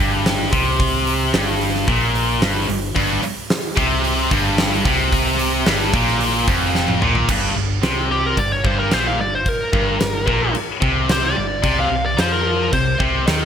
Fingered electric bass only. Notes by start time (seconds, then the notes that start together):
0.00 G1
0.53 C2
1.33 G1
1.88 A#1
2.41 G1
2.69 G1
2.96 G1
3.77 C2
4.31 G1
4.85 C2
5.66 G1
5.94 A#1
6.48 F1
7.01 A#1
7.29 G1
7.56 G1
7.82 C2
8.37 G1
8.65 G1
8.92 A#1
9.20 G1
9.73 G1
10.02 G1
10.28 A#1
10.55 muted fingered electric bass stroke
10.82 C2
11.37 G1
11.64 C2
11.90 C2
12.19 F2
12.73 C2
13.00 C2
13.28 D#2